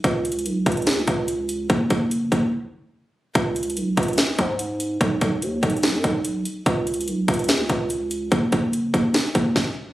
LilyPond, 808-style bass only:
\new Staff \with { instrumentName = "808-style bass" } { \clef bass \time 4/4 \key cis \minor \tempo 4 = 145 cis,4 b,,8 cis,8 e,16 cis,16 cis,4. | fis,,8 fis,,4 fis,,8 r2 | cis,4 b,,8 cis,8 r8 gis,4. | b,,8 b,,8 dis,8 b,,8. fis,16 b,,4 r8 |
cis,4 b,,8 cis,8 e,16 cis,16 cis,4. | fis,,8 fis,,4 fis,,8 r8 fis,,8 r4 | }